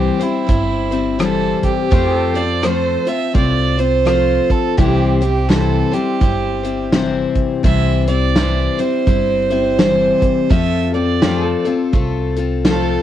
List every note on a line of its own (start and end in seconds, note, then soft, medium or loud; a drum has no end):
0.00 0.21 C3 medium
0.00 0.21 E3 medium
0.00 0.21 G3 medium
0.00 0.20 C4 medium
0.00 0.19 E4 medium
0.00 0.24 G4 medium
0.00 0.18 C5 medium
0.19 0.45 G3 soft
0.19 0.46 C4 soft
0.19 0.47 E4 soft
0.19 1.21 E4 medium
0.19 0.48 C5 medium
0.19 closed hi-hat medium
0.47 1.52 G1 medium
0.47 0.91 G3 medium
0.47 0.91 C4 medium
0.47 0.91 E4 medium
0.47 0.90 C5 medium
0.47 kick medium
0.47 closed hi-hat medium
0.91 1.19 G3 soft
0.91 1.19 C4 soft
0.91 1.19 E4 soft
0.91 1.19 C5 soft
0.91 closed hi-hat medium
1.19 1.91 C3 medium
1.19 1.90 E3 medium
1.19 1.91 G3 medium
1.19 1.91 C4 medium
1.19 1.92 E4 medium
1.19 1.62 A4 medium
1.19 1.92 C5 medium
1.19 cross-stick loud
1.19 closed hi-hat medium
1.63 2.38 G4 medium
1.63 kick medium
1.63 closed hi-hat medium
1.91 2.95 F2 medium
1.91 2.35 F3 medium
1.91 2.35 A3 medium
1.91 2.35 C4 medium
1.91 2.34 F4 medium
1.91 2.17 G4 medium
1.91 2.33 C5 medium
1.91 4.76 C5 medium
1.91 kick loud
1.91 closed hi-hat medium
2.17 4.75 A4 medium
2.34 2.62 C4 soft
2.34 2.63 F4 soft
2.34 2.63 C5 soft
2.34 2.66 D5 medium
2.34 closed hi-hat medium
2.62 3.06 F3 medium
2.62 3.07 A3 medium
2.62 3.07 C4 medium
2.62 3.05 F4 medium
2.62 3.04 C5 medium
2.62 3.10 C5 loud
2.62 cross-stick loud
2.62 closed hi-hat medium
3.05 3.33 C4 soft
3.05 3.34 F4 soft
3.05 3.34 C5 soft
3.05 3.36 E5 medium
3.05 closed hi-hat medium
3.33 4.38 C2 medium
3.33 3.77 A3 soft
3.33 3.78 C4 medium
3.33 3.77 F4 medium
3.33 3.76 C5 medium
3.33 3.81 D5 loud
3.33 kick medium
3.33 closed hi-hat medium
3.78 4.05 C4 soft
3.78 4.05 F4 soft
3.78 4.06 C5 soft
3.78 4.52 C5 medium
3.78 closed hi-hat soft
4.05 4.77 F3 medium
4.05 4.78 A3 medium
4.05 4.78 C4 medium
4.05 4.78 F4 medium
4.05 4.79 C5 medium
4.05 cross-stick loud
4.05 closed hi-hat medium
4.50 4.78 A4 medium
4.50 kick medium
4.50 closed hi-hat medium
4.77 5.81 C2 medium
4.77 5.21 C3 medium
4.77 5.21 E3 medium
4.77 5.21 G3 medium
4.77 5.21 C4 medium
4.77 5.20 E4 medium
4.77 10.46 G4 medium
4.77 5.19 G4 medium
4.77 10.47 C5 medium
4.77 5.19 C5 medium
4.77 kick loud
4.77 closed hi-hat medium
5.20 5.48 G3 soft
5.20 5.49 C4 soft
5.20 5.49 E4 soft
5.20 5.51 G4 medium
5.20 5.49 C5 soft
5.20 closed hi-hat medium
5.49 5.92 C3 medium
5.49 5.92 E3 medium
5.49 5.93 G3 medium
5.49 5.92 C4 medium
5.49 5.91 E4 medium
5.49 5.95 A4 medium
5.49 5.90 C5 medium
5.49 snare loud
5.49 closed hi-hat medium
5.91 6.19 G3 soft
5.91 6.20 C4 soft
5.91 6.21 E4 soft
5.91 6.93 G4 medium
5.91 6.21 C5 medium
5.91 closed hi-hat medium
6.20 7.24 G1 medium
6.20 6.64 G3 medium
6.20 6.64 C4 medium
6.20 6.63 E4 medium
6.20 6.62 C5 medium
6.20 kick loud
6.20 closed hi-hat medium
6.63 6.92 G3 soft
6.63 6.92 C4 soft
6.63 6.93 E4 soft
6.63 6.92 C5 soft
6.63 closed hi-hat medium
6.92 7.62 C3 medium
6.92 7.63 E3 medium
6.92 7.63 G3 medium
6.92 7.64 C4 medium
6.92 7.64 E4 medium
6.92 7.65 C5 loud
6.92 snare loud
6.92 closed hi-hat medium
7.35 kick medium
7.35 closed hi-hat medium
7.63 8.67 C2 medium
7.63 8.07 C3 medium
7.63 8.07 E3 medium
7.63 8.07 G3 medium
7.63 8.08 C4 medium
7.63 8.07 E4 medium
7.63 8.07 C5 medium
7.63 8.05 E5 medium
7.63 kick loud
7.63 closed hi-hat medium
8.07 8.35 G3 soft
8.07 8.35 C4 soft
8.07 8.36 E4 soft
8.07 8.36 C5 soft
8.07 8.81 D5 medium
8.07 closed hi-hat medium
8.35 8.79 C3 medium
8.35 8.79 E3 medium
8.35 8.79 G3 medium
8.35 8.79 C4 medium
8.35 8.78 E4 medium
8.35 8.77 C5 medium
8.35 snare loud
8.35 closed hi-hat medium
8.78 9.05 G3 soft
8.78 9.06 C4 soft
8.78 9.07 E4 soft
8.78 9.07 C5 medium
8.78 10.52 C5 medium
8.78 closed hi-hat medium
9.07 10.10 G1 medium
9.07 9.50 G3 medium
9.07 9.50 C4 medium
9.07 9.50 E4 medium
9.07 9.49 C5 medium
9.07 kick loud
9.07 closed hi-hat medium
9.50 9.78 G3 soft
9.50 9.78 C4 soft
9.50 9.78 E4 soft
9.50 9.79 C5 soft
9.50 closed hi-hat soft
9.78 10.50 C3 medium
9.78 10.49 E3 medium
9.78 10.50 G3 medium
9.78 10.49 C4 medium
9.78 10.51 E4 medium
9.78 10.51 C5 medium
9.78 snare loud
9.78 closed hi-hat medium
10.22 kick medium
10.22 closed hi-hat medium
10.49 11.53 F2 medium
10.49 10.93 F3 medium
10.49 10.93 A3 medium
10.49 10.93 C4 medium
10.49 10.93 F4 medium
10.49 10.91 A4 medium
10.49 10.94 E5 medium
10.49 kick loud
10.49 closed hi-hat medium
10.92 11.21 C4 soft
10.92 11.22 F4 soft
10.92 11.21 A4 soft
10.92 11.61 D5 medium
10.92 closed hi-hat medium
11.22 11.65 F3 medium
11.22 11.65 A3 medium
11.22 11.65 C4 medium
11.22 11.65 F4 medium
11.22 11.47 G4 medium
11.22 11.63 A4 medium
11.22 13.02 C5 medium
11.22 snare loud
11.22 closed hi-hat medium
11.47 13.02 A4 medium
11.64 11.92 C4 soft
11.64 11.94 F4 soft
11.64 11.93 A4 medium
11.64 closed hi-hat medium
11.92 12.96 C2 medium
11.92 12.36 A3 medium
11.92 12.36 C4 medium
11.92 12.36 F4 medium
11.92 12.35 A4 medium
11.92 kick medium
11.92 closed hi-hat medium
12.36 12.64 C4 soft
12.36 12.65 F4 soft
12.36 12.65 A4 medium
12.36 closed hi-hat medium
12.65 13.02 F3 medium
12.65 13.02 A3 medium
12.65 13.02 C4 medium
12.65 13.02 F4 medium
12.65 13.02 A4 medium
12.65 snare loud
12.65 closed hi-hat medium